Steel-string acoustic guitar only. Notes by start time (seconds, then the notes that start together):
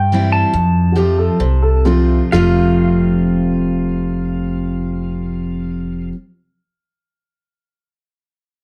Already playing: G2
0.12 E3 G3 C4 E4
0.53 F2
0.96 F3 A3 C4 F4
1.40 C3
1.85 F3 A3 C4 F4
2.32 F2 C3 F3 A3 C4 F4